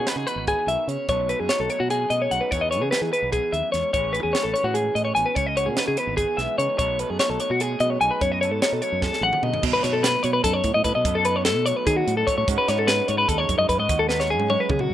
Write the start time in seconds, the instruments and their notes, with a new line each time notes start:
Already playing: clean electric guitar C#3 E3 F#4
0.06 clean electric guitar D#4 B4, snare, closed hi-hat
0.16 fingered electric bass C#3, clean electric guitar G#4
0.27 clean electric guitar E3 B3 B4, closed hi-hat
0.36 fingered electric bass G#1
0.47 clean electric guitar E3 G#4, kick, closed hi-hat
0.66 fingered electric bass B1, clean electric guitar D#3 E5, closed hi-hat
0.88 fingered electric bass C#3, clean electric guitar C#3 C#5, closed hi-hat
1.09 fingered electric bass B1, clean electric guitar B2 F#3 A3 D#4 A4 C#5, kick, closed hi-hat
1.29 clean electric guitar A4 B4, closed hi-hat
1.40 fingered electric bass F#2, clean electric guitar G#4
1.49 clean electric guitar D#4 C#5, snare, closed hi-hat
1.60 fingered electric bass B1, clean electric guitar A4
1.70 clean electric guitar F#3 A3 C#5, closed hi-hat
1.80 fingered electric bass B2, clean electric guitar F#4
1.90 clean electric guitar G#4, closed hi-hat
2.10 clean electric guitar F#2 A3 D#5, fingered electric bass B2, closed hi-hat
2.22 clean electric guitar C#5
2.31 fingered electric bass B1, clean electric guitar D#4 F#5, closed hi-hat
2.41 clean electric guitar B4
2.51 fingered electric bass E2, clean electric guitar E2 E3 B3 D#4 C#5, kick, closed hi-hat
2.55 clean electric guitar G#4
2.61 clean electric guitar D#5
2.71 clean electric guitar G#4 C#5, closed hi-hat
2.82 fingered electric bass C#3, clean electric guitar G#4
2.91 clean electric guitar D#4 B4, snare, closed hi-hat
3.01 fingered electric bass E3, clean electric guitar G#4
3.13 clean electric guitar E3 B3 B4, closed hi-hat
3.22 fingered electric bass B1
3.32 clean electric guitar E2 G#4, kick, closed hi-hat
3.53 fingered electric bass D#2, clean electric guitar F#2 E5, closed hi-hat
3.72 fingered electric bass E2, clean electric guitar G#2 C#5, snare, closed hi-hat
3.93 fingered electric bass A1, clean electric guitar A2 E3 C#4 E4 G#4 C#5, kick, closed hi-hat
4.13 clean electric guitar G#4 B4, closed hi-hat
4.23 fingered electric bass E2, clean electric guitar G#4
4.33 clean electric guitar E4 C#5, snare, closed hi-hat
4.43 fingered electric bass A1, clean electric guitar A4
4.54 clean electric guitar E3 C#4 C#5, closed hi-hat
4.64 fingered electric bass A2, clean electric guitar F#4
4.74 clean electric guitar G#2 G#4, closed hi-hat
4.94 clean electric guitar A2 D#5, fingered electric bass A2, closed hi-hat
5.05 clean electric guitar C#5
5.15 fingered electric bass A1, clean electric guitar B2 G#5, closed hi-hat
5.26 clean electric guitar B4
5.34 fingered electric bass C#2, clean electric guitar C#3 C#5, kick, closed hi-hat
5.47 clean electric guitar D#5
5.56 clean electric guitar F#4 C#5, closed hi-hat
5.66 fingered electric bass B2, clean electric guitar G#4
5.76 clean electric guitar D#4 B4, snare, closed hi-hat
5.88 fingered electric bass C#3, clean electric guitar G#4
5.96 clean electric guitar E3 B3 B4, closed hi-hat
6.07 fingered electric bass G#1
6.17 clean electric guitar G#4, kick, closed hi-hat
6.37 fingered electric bass B1, clean electric guitar G#2 B3 E5, snare, closed hi-hat
6.58 fingered electric bass C#3, clean electric guitar D#4 C#5, closed hi-hat
6.78 fingered electric bass B1, clean electric guitar B2 F#3 A3 D#4 A4 C#5, kick, closed hi-hat
6.99 clean electric guitar A4 B4, closed hi-hat
7.10 fingered electric bass F#2, clean electric guitar G#4
7.19 clean electric guitar D#4 C#5, snare, closed hi-hat
7.30 fingered electric bass B1, clean electric guitar A4
7.40 clean electric guitar F#3 A3 C#5, closed hi-hat
7.50 fingered electric bass B2, clean electric guitar F#4
7.60 clean electric guitar G#4, closed hi-hat
7.80 clean electric guitar F#2 A3 D#5, fingered electric bass B2, closed hi-hat
7.90 clean electric guitar C#5
8.01 fingered electric bass B1, clean electric guitar D#4 G#5, closed hi-hat
8.11 clean electric guitar B4
8.21 fingered electric bass F#2, clean electric guitar B2 C#5, kick, closed hi-hat
8.32 clean electric guitar D#5
8.41 clean electric guitar A4 C#5, closed hi-hat
8.51 fingered electric bass G#2, clean electric guitar A4
8.62 clean electric guitar D#4 C#5, snare, closed hi-hat
8.72 fingered electric bass B2, clean electric guitar A4
8.82 clean electric guitar F#3 A3 C#5, closed hi-hat
8.92 fingered electric bass F#2
9.02 clean electric guitar G#4 A4, kick, snare
9.13 snare
9.21 fingered electric bass A1, clean electric guitar F#2 A3 F#5, high tom
9.33 mid tom
9.43 fingered electric bass B2, clean electric guitar D#4 D#5, mid tom
9.54 floor tom
9.62 clean electric guitar B2 F#3 A3 D#4 A4, fingered electric bass B2, kick, crash
9.73 clean electric guitar B4
9.82 fingered electric bass B2, clean electric guitar D#4 C#5, snare, closed hi-hat
9.93 clean electric guitar A4
10.03 clean electric guitar A3 B4, snare, closed hi-hat
10.22 fingered electric bass B2, clean electric guitar F#3 C#5, closed hi-hat
10.33 clean electric guitar B4
10.43 fingered electric bass F#2, clean electric guitar D#4 A4, kick, closed hi-hat
10.53 clean electric guitar C#5
10.64 clean electric guitar F#2, fingered electric bass A2, kick, closed hi-hat
10.74 fingered electric bass A2, clean electric guitar D#5
10.84 fingered electric bass A2, clean electric guitar A4 B4, kick, closed hi-hat
10.95 fingered electric bass B2, clean electric guitar D#5
11.05 fingered electric bass F#2, clean electric guitar B2 A4, kick, closed hi-hat
11.15 clean electric guitar A4
11.25 clean electric guitar D#4 B4, closed hi-hat
11.36 clean electric guitar C#5
11.45 clean electric guitar A3 A4, snare, closed hi-hat
11.56 fingered electric bass B2
11.66 clean electric guitar F#3 C#5, closed hi-hat
11.77 clean electric guitar B4
11.87 fingered electric bass D#3, clean electric guitar D#4 G#4, kick, closed hi-hat
11.97 clean electric guitar F#4
12.06 clean electric guitar F#2, fingered electric bass A2, closed hi-hat
12.17 clean electric guitar A4
12.27 clean electric guitar A4 C#5, kick, closed hi-hat
12.38 fingered electric bass A2, clean electric guitar C#5
12.46 clean electric guitar G#2 G#3 C#4 D#4 F#4, fingered electric bass G#2, kick, closed hi-hat
12.58 clean electric guitar B4
12.68 fingered electric bass G#2, clean electric guitar D#4 C#5, snare, closed hi-hat
12.79 clean electric guitar A4
12.87 clean electric guitar C#4 B4, snare, closed hi-hat
13.08 fingered electric bass G#2, clean electric guitar G#3 C#5, closed hi-hat
13.18 clean electric guitar B4
13.28 fingered electric bass D#2, clean electric guitar D#4 A4, kick, closed hi-hat
13.38 clean electric guitar C#5
13.49 fingered electric bass F#2, clean electric guitar D#3, kick, closed hi-hat
13.59 fingered electric bass F#2, clean electric guitar D#5
13.69 fingered electric bass F#2, clean electric guitar E4 B4, kick, closed hi-hat
13.78 fingered electric bass G#2, clean electric guitar F#4 D#5
13.89 fingered electric bass D#2, clean electric guitar G#2 F#4, kick, closed hi-hat
13.99 clean electric guitar A4
14.09 clean electric guitar D#4 B4, snare
14.20 clean electric guitar C#5, snare
14.30 clean electric guitar C#4 G#4
14.39 fingered electric bass G#2, high tom
14.50 clean electric guitar G#3 C#5, high tom
14.60 clean electric guitar B4
14.69 clean electric guitar F#2 G#4, fingered electric bass C#3, kick, mid tom
14.79 clean electric guitar F#4, mid tom
14.90 fingered electric bass F#2, clean electric guitar G#2